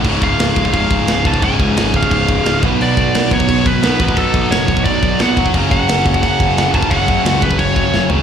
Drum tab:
CC |x-x-x-x-x-x-x-x-|x-x-x-x-x-x-x-x-|x-x-x-x-x-x-x-x-|x-x-x-x-x-x-x-x-|
SD |----o-------o---|----o-------o---|----o-------o---|----o-------o---|
FT |----------------|----------------|----------------|----------------|
BD |o-o---ooo-o---oo|o-o---ooo-o---o-|--o---ooo-o---oo|o-o---ooo-o---oo|

CC |x-x-x-x-x-x-x-x-|x-x-x-x-x-x-----|
SD |----o-------o---|----o-------o---|
FT |----------------|--------------o-|
BD |o-o---ooo-o---oo|o-o---ooo-o-----|